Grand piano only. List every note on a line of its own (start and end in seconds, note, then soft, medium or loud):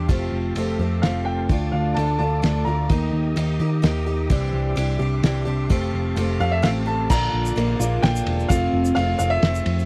1.02 1.26 F5 medium
1.25 1.74 G5 medium
1.72 1.96 F5 medium
1.94 2.17 A5 medium
2.19 2.63 A5 medium
2.65 3.55 A#5 medium
6.40 6.52 F5 medium
6.52 6.64 E5 loud
6.63 6.68 F5 medium
6.87 7.09 A5 medium
7.10 8.06 A#5 loud
8.02 8.51 G5 medium
8.49 8.93 F5 medium
8.95 9.17 F5 loud
9.19 9.31 F5 medium
9.30 9.85 E5 loud